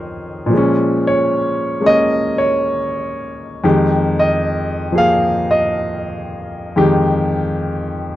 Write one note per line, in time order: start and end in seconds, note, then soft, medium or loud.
0.00 0.51 F2 soft
0.00 0.51 D#3 soft
0.00 0.48 F3 soft
0.00 0.52 G#3 soft
0.00 0.53 F4 soft
0.00 0.49 G#4 medium
0.00 0.54 A#4 medium
0.00 0.53 C5 medium
0.00 0.53 C#5 medium
0.00 0.53 D#5 medium
0.00 0.52 G5 medium
0.46 3.62 A#2 medium
0.46 3.63 F3 medium
0.53 1.79 G#3 soft
0.57 1.82 C#4 medium
1.07 1.80 C#5 medium
1.81 3.63 G#3 soft
1.81 3.65 A#3 soft
1.81 3.65 C#4 soft
1.86 2.33 D#5 medium
2.38 2.78 C#5 medium
3.64 6.75 F2 medium
3.64 6.76 D#3 medium
3.64 6.75 G#3 medium
3.64 6.76 G4 medium
4.19 4.92 D#5 medium
4.92 6.76 F3 soft
4.92 6.77 A#3 soft
4.92 6.77 G#4 soft
4.98 5.45 F5 medium
5.51 5.75 D#5 medium
6.76 8.16 F2 medium
6.76 8.16 D#3 medium
6.76 8.16 G#3 medium
6.76 8.16 G4 medium